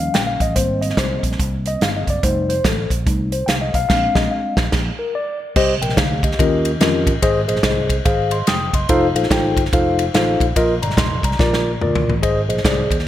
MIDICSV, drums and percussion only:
0, 0, Header, 1, 2, 480
1, 0, Start_track
1, 0, Tempo, 416667
1, 647, Time_signature, 4, 2, 24, 8
1, 15067, End_track
2, 0, Start_track
2, 0, Title_t, "Drums"
2, 162, Note_on_c, 9, 42, 76
2, 171, Note_on_c, 9, 38, 97
2, 277, Note_off_c, 9, 42, 0
2, 286, Note_off_c, 9, 38, 0
2, 464, Note_on_c, 9, 36, 93
2, 467, Note_on_c, 9, 42, 69
2, 580, Note_off_c, 9, 36, 0
2, 582, Note_off_c, 9, 42, 0
2, 644, Note_on_c, 9, 42, 97
2, 646, Note_on_c, 9, 36, 99
2, 759, Note_off_c, 9, 42, 0
2, 761, Note_off_c, 9, 36, 0
2, 949, Note_on_c, 9, 42, 78
2, 1034, Note_on_c, 9, 38, 36
2, 1065, Note_off_c, 9, 42, 0
2, 1120, Note_off_c, 9, 38, 0
2, 1120, Note_on_c, 9, 36, 94
2, 1120, Note_on_c, 9, 38, 102
2, 1125, Note_on_c, 9, 42, 78
2, 1235, Note_off_c, 9, 36, 0
2, 1236, Note_off_c, 9, 38, 0
2, 1240, Note_off_c, 9, 42, 0
2, 1420, Note_on_c, 9, 36, 79
2, 1424, Note_on_c, 9, 42, 81
2, 1518, Note_on_c, 9, 38, 36
2, 1535, Note_off_c, 9, 36, 0
2, 1540, Note_off_c, 9, 42, 0
2, 1607, Note_on_c, 9, 36, 109
2, 1608, Note_on_c, 9, 42, 81
2, 1633, Note_off_c, 9, 38, 0
2, 1722, Note_off_c, 9, 36, 0
2, 1724, Note_off_c, 9, 42, 0
2, 1908, Note_on_c, 9, 42, 71
2, 2023, Note_off_c, 9, 42, 0
2, 2089, Note_on_c, 9, 42, 77
2, 2098, Note_on_c, 9, 38, 108
2, 2204, Note_off_c, 9, 42, 0
2, 2213, Note_off_c, 9, 38, 0
2, 2388, Note_on_c, 9, 36, 84
2, 2391, Note_on_c, 9, 42, 73
2, 2503, Note_off_c, 9, 36, 0
2, 2506, Note_off_c, 9, 42, 0
2, 2572, Note_on_c, 9, 36, 103
2, 2573, Note_on_c, 9, 42, 90
2, 2687, Note_off_c, 9, 36, 0
2, 2688, Note_off_c, 9, 42, 0
2, 2879, Note_on_c, 9, 42, 81
2, 2994, Note_off_c, 9, 42, 0
2, 3046, Note_on_c, 9, 36, 99
2, 3048, Note_on_c, 9, 38, 105
2, 3053, Note_on_c, 9, 42, 80
2, 3161, Note_off_c, 9, 36, 0
2, 3164, Note_off_c, 9, 38, 0
2, 3168, Note_off_c, 9, 42, 0
2, 3346, Note_on_c, 9, 36, 89
2, 3353, Note_on_c, 9, 42, 73
2, 3461, Note_off_c, 9, 36, 0
2, 3468, Note_off_c, 9, 42, 0
2, 3531, Note_on_c, 9, 36, 121
2, 3533, Note_on_c, 9, 42, 77
2, 3647, Note_off_c, 9, 36, 0
2, 3648, Note_off_c, 9, 42, 0
2, 3827, Note_on_c, 9, 42, 69
2, 3942, Note_off_c, 9, 42, 0
2, 4009, Note_on_c, 9, 42, 77
2, 4018, Note_on_c, 9, 38, 106
2, 4124, Note_off_c, 9, 42, 0
2, 4133, Note_off_c, 9, 38, 0
2, 4309, Note_on_c, 9, 36, 83
2, 4311, Note_on_c, 9, 42, 74
2, 4424, Note_off_c, 9, 36, 0
2, 4426, Note_off_c, 9, 42, 0
2, 4490, Note_on_c, 9, 36, 109
2, 4490, Note_on_c, 9, 38, 95
2, 4490, Note_on_c, 9, 49, 74
2, 4605, Note_off_c, 9, 36, 0
2, 4605, Note_off_c, 9, 38, 0
2, 4605, Note_off_c, 9, 49, 0
2, 4786, Note_on_c, 9, 36, 107
2, 4786, Note_on_c, 9, 38, 104
2, 4901, Note_off_c, 9, 36, 0
2, 4901, Note_off_c, 9, 38, 0
2, 5263, Note_on_c, 9, 36, 106
2, 5263, Note_on_c, 9, 38, 99
2, 5379, Note_off_c, 9, 36, 0
2, 5379, Note_off_c, 9, 38, 0
2, 5441, Note_on_c, 9, 38, 100
2, 5441, Note_on_c, 9, 49, 75
2, 5445, Note_on_c, 9, 36, 117
2, 5557, Note_off_c, 9, 38, 0
2, 5557, Note_off_c, 9, 49, 0
2, 5560, Note_off_c, 9, 36, 0
2, 6403, Note_on_c, 9, 49, 98
2, 6406, Note_on_c, 9, 36, 117
2, 6518, Note_off_c, 9, 49, 0
2, 6521, Note_off_c, 9, 36, 0
2, 6708, Note_on_c, 9, 53, 65
2, 6791, Note_on_c, 9, 38, 39
2, 6823, Note_off_c, 9, 53, 0
2, 6878, Note_on_c, 9, 36, 101
2, 6881, Note_off_c, 9, 38, 0
2, 6881, Note_on_c, 9, 38, 115
2, 6885, Note_on_c, 9, 53, 74
2, 6994, Note_off_c, 9, 36, 0
2, 6996, Note_off_c, 9, 38, 0
2, 7001, Note_off_c, 9, 53, 0
2, 7178, Note_on_c, 9, 36, 95
2, 7184, Note_on_c, 9, 53, 61
2, 7276, Note_on_c, 9, 38, 37
2, 7293, Note_off_c, 9, 36, 0
2, 7299, Note_off_c, 9, 53, 0
2, 7364, Note_on_c, 9, 36, 127
2, 7370, Note_on_c, 9, 53, 74
2, 7392, Note_off_c, 9, 38, 0
2, 7479, Note_off_c, 9, 36, 0
2, 7485, Note_off_c, 9, 53, 0
2, 7661, Note_on_c, 9, 53, 65
2, 7776, Note_off_c, 9, 53, 0
2, 7841, Note_on_c, 9, 53, 71
2, 7850, Note_on_c, 9, 38, 105
2, 7956, Note_off_c, 9, 53, 0
2, 7965, Note_off_c, 9, 38, 0
2, 8141, Note_on_c, 9, 36, 101
2, 8145, Note_on_c, 9, 53, 70
2, 8257, Note_off_c, 9, 36, 0
2, 8260, Note_off_c, 9, 53, 0
2, 8323, Note_on_c, 9, 36, 105
2, 8323, Note_on_c, 9, 53, 81
2, 8438, Note_off_c, 9, 36, 0
2, 8438, Note_off_c, 9, 53, 0
2, 8624, Note_on_c, 9, 53, 62
2, 8708, Note_on_c, 9, 38, 40
2, 8739, Note_off_c, 9, 53, 0
2, 8792, Note_off_c, 9, 38, 0
2, 8792, Note_on_c, 9, 38, 115
2, 8795, Note_on_c, 9, 36, 97
2, 8797, Note_on_c, 9, 53, 75
2, 8907, Note_off_c, 9, 38, 0
2, 8910, Note_off_c, 9, 36, 0
2, 8912, Note_off_c, 9, 53, 0
2, 9095, Note_on_c, 9, 36, 89
2, 9099, Note_on_c, 9, 53, 68
2, 9210, Note_off_c, 9, 36, 0
2, 9214, Note_off_c, 9, 53, 0
2, 9279, Note_on_c, 9, 53, 72
2, 9280, Note_on_c, 9, 36, 124
2, 9394, Note_off_c, 9, 53, 0
2, 9395, Note_off_c, 9, 36, 0
2, 9574, Note_on_c, 9, 53, 64
2, 9689, Note_off_c, 9, 53, 0
2, 9757, Note_on_c, 9, 53, 70
2, 9766, Note_on_c, 9, 38, 107
2, 9873, Note_off_c, 9, 53, 0
2, 9881, Note_off_c, 9, 38, 0
2, 10062, Note_on_c, 9, 36, 95
2, 10065, Note_on_c, 9, 53, 68
2, 10177, Note_off_c, 9, 36, 0
2, 10180, Note_off_c, 9, 53, 0
2, 10241, Note_on_c, 9, 53, 79
2, 10245, Note_on_c, 9, 36, 122
2, 10356, Note_off_c, 9, 53, 0
2, 10360, Note_off_c, 9, 36, 0
2, 10549, Note_on_c, 9, 53, 71
2, 10635, Note_on_c, 9, 38, 41
2, 10665, Note_off_c, 9, 53, 0
2, 10719, Note_on_c, 9, 36, 97
2, 10723, Note_off_c, 9, 38, 0
2, 10723, Note_on_c, 9, 38, 112
2, 10728, Note_on_c, 9, 53, 75
2, 10835, Note_off_c, 9, 36, 0
2, 10839, Note_off_c, 9, 38, 0
2, 10843, Note_off_c, 9, 53, 0
2, 11020, Note_on_c, 9, 36, 94
2, 11027, Note_on_c, 9, 53, 65
2, 11121, Note_on_c, 9, 38, 42
2, 11136, Note_off_c, 9, 36, 0
2, 11142, Note_off_c, 9, 53, 0
2, 11206, Note_on_c, 9, 36, 127
2, 11209, Note_on_c, 9, 53, 73
2, 11236, Note_off_c, 9, 38, 0
2, 11321, Note_off_c, 9, 36, 0
2, 11324, Note_off_c, 9, 53, 0
2, 11507, Note_on_c, 9, 53, 67
2, 11622, Note_off_c, 9, 53, 0
2, 11686, Note_on_c, 9, 53, 66
2, 11694, Note_on_c, 9, 38, 116
2, 11801, Note_off_c, 9, 53, 0
2, 11810, Note_off_c, 9, 38, 0
2, 11986, Note_on_c, 9, 36, 98
2, 11993, Note_on_c, 9, 53, 66
2, 12101, Note_off_c, 9, 36, 0
2, 12108, Note_off_c, 9, 53, 0
2, 12167, Note_on_c, 9, 36, 109
2, 12167, Note_on_c, 9, 53, 81
2, 12282, Note_off_c, 9, 36, 0
2, 12282, Note_off_c, 9, 53, 0
2, 12472, Note_on_c, 9, 53, 68
2, 12559, Note_on_c, 9, 38, 44
2, 12587, Note_off_c, 9, 53, 0
2, 12640, Note_on_c, 9, 36, 112
2, 12645, Note_off_c, 9, 38, 0
2, 12645, Note_on_c, 9, 38, 115
2, 12649, Note_on_c, 9, 53, 73
2, 12755, Note_off_c, 9, 36, 0
2, 12760, Note_off_c, 9, 38, 0
2, 12764, Note_off_c, 9, 53, 0
2, 12940, Note_on_c, 9, 36, 95
2, 12949, Note_on_c, 9, 53, 69
2, 13036, Note_on_c, 9, 38, 36
2, 13055, Note_off_c, 9, 36, 0
2, 13064, Note_off_c, 9, 53, 0
2, 13125, Note_on_c, 9, 36, 127
2, 13129, Note_off_c, 9, 38, 0
2, 13129, Note_on_c, 9, 38, 66
2, 13240, Note_off_c, 9, 36, 0
2, 13244, Note_off_c, 9, 38, 0
2, 13288, Note_on_c, 9, 38, 66
2, 13403, Note_off_c, 9, 38, 0
2, 13610, Note_on_c, 9, 45, 77
2, 13725, Note_off_c, 9, 45, 0
2, 13772, Note_on_c, 9, 43, 99
2, 13887, Note_off_c, 9, 43, 0
2, 13934, Note_on_c, 9, 43, 89
2, 14049, Note_off_c, 9, 43, 0
2, 14090, Note_on_c, 9, 53, 83
2, 14091, Note_on_c, 9, 36, 113
2, 14205, Note_off_c, 9, 53, 0
2, 14207, Note_off_c, 9, 36, 0
2, 14397, Note_on_c, 9, 53, 61
2, 14486, Note_on_c, 9, 38, 43
2, 14512, Note_off_c, 9, 53, 0
2, 14567, Note_on_c, 9, 36, 109
2, 14572, Note_off_c, 9, 38, 0
2, 14572, Note_on_c, 9, 38, 108
2, 14577, Note_on_c, 9, 53, 70
2, 14683, Note_off_c, 9, 36, 0
2, 14687, Note_off_c, 9, 38, 0
2, 14692, Note_off_c, 9, 53, 0
2, 14868, Note_on_c, 9, 36, 92
2, 14877, Note_on_c, 9, 53, 65
2, 14966, Note_on_c, 9, 38, 40
2, 14983, Note_off_c, 9, 36, 0
2, 14992, Note_off_c, 9, 53, 0
2, 15067, Note_off_c, 9, 38, 0
2, 15067, End_track
0, 0, End_of_file